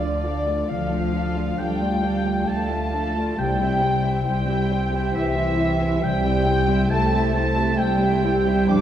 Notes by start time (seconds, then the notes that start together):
Already playing: D2 D3 A3 D4 F4 A4 D5 F5 A5
0.01 A3 F4 D5
0.24 F3 D4 A4 F5
0.46 A3 F4 D5
0.69 D2 D3 F3 D4 A4 F5
0.91 A3 F4 D5
1.13 F3 D4 A4 F5
1.36 A3 F4 D5
1.58 D2 F3 G3 D4 A4 F5 G5
1.80 A3 F4 D5
2.03 F3 D4 A4 F5
2.24 A3 F4 D5 A5
2.46 D2 F3 A3 D4 A4 F5 A5
2.70 A3 F4 D5
2.93 F3 D4 A4 F5
3.16 A3 F4 D5
3.38 C2 C3 G3 E4 G4 C5 G5
3.60 G3 C4 E4 G4 E5
3.82 G3 C4 E4 G4 C5
4.04 C4 E4 G4 E5
4.25 C2 G3 C4 E4 G4 C5 G5
4.48 C4 E4 G4 C5 E5
4.69 G3 E4 G4 C5 E5
4.91 C4 E4 G4 C5 E5
5.14 C2 E3 G3 E4 G4 C5 E5
5.35 C4 E4 G4 C5 E5
5.58 G3 E4 G4 C5
5.79 C4 E4 G4 E5
6.01 C2 C3 G3 E4 G4 C5 G5
6.23 G3 C4 E4 G4 E5
6.46 G3 C4 E4 G4 C5
6.68 C4 E4 G4 E5
6.90 C2 G3 A3 C4 E4 G4 C5 A5
7.12 C4 E4 G4 C5 E5
7.34 G3 A3 E4 G4 C5 E5 A5
7.56 C4 E4 G4 C5 E5
7.77 C2 G3 E4 G4 C5 E5 G5
8.00 C4 E4 G4 C5 E5
8.23 G3 E4 G4 C5
8.46 C4 E4 G4 E5
8.69 F2 F3 C4 D4 G4 A4 C5 D6